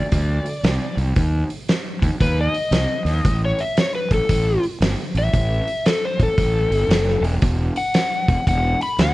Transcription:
Already playing: D5
0.12 D2, kick, open hi-hat
0.46 open hi-hat
0.63 C2, snare, open hi-hat
0.97 C2, open hi-hat
1.16 D#2, kick, open hi-hat
1.50 open hi-hat
1.69 snare, open hi-hat
2.02 D#2, kick, open hi-hat
2.20 D#2 B4, kick, open hi-hat
2.41 D#5
2.54 open hi-hat
2.71 C2, snare, open hi-hat
3.05 D#2, open hi-hat
3.24 A1, kick, open hi-hat
3.45 C#5
3.59 E5, open hi-hat
3.77 C#5, snare, open hi-hat
3.95 B4
4.11 A1 A4, kick, open hi-hat
4.29 A1, kick, open hi-hat
4.63 open hi-hat
4.80 G1, snare, open hi-hat
5.14 A1 E5, open hi-hat
5.33 A1, kick, open hi-hat
5.68 open hi-hat
5.86 A4, snare, open hi-hat
6.05 C5
6.19 A1 A4, kick, open hi-hat
6.38 A1, kick, open hi-hat
6.70 G1, open hi-hat
6.88 F#1, snare, open hi-hat
7.08 snare
7.21 E1, open hi-hat
7.42 E1, kick, open hi-hat
7.76 F#5, open hi-hat
7.94 snare, open hi-hat
8.28 E1, kick, open hi-hat
8.47 E1 F#5, kick, open hi-hat
8.81 B5, open hi-hat
8.99 D2 F#5, snare, open hi-hat

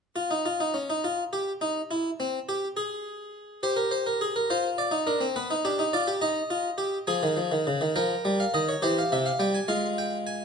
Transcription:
0.16 F4
0.31 D#4
0.46 F4
0.60 D#4
0.74 C#4
0.90 D#4
1.04 F4
1.33 G4
1.61 D#4
1.91 E4
2.20 C4
2.49 G4
2.77 G#4
3.63 G4 C5
3.76 A#4
3.91 C5
4.06 A#4
4.21 G#4
4.36 A#4
4.50 F4 C5
4.78 D5
4.91 D#4
5.07 D4 A#4
5.21 C4
5.36 B3 B4
5.51 D#4
5.65 D4 G4
5.79 D#4
5.93 F4 D5
6.07 G4
6.21 D#4 D#5
6.50 F4
6.78 G4
7.07 F3 G#4 G#5
7.23 D#3
7.37 F3
7.52 D#3
7.67 C#3
7.81 D#3
7.96 F3 A#4 G5
8.25 G3
8.40 F5
8.54 D#3 D#5
8.69 C#5
8.82 E3 G4 C5
8.98 F5
9.12 C3 E5
9.26 F5
9.39 G3 G5
9.55 G#5
9.68 G#3 F4 F5
9.98 G5
10.27 G#5

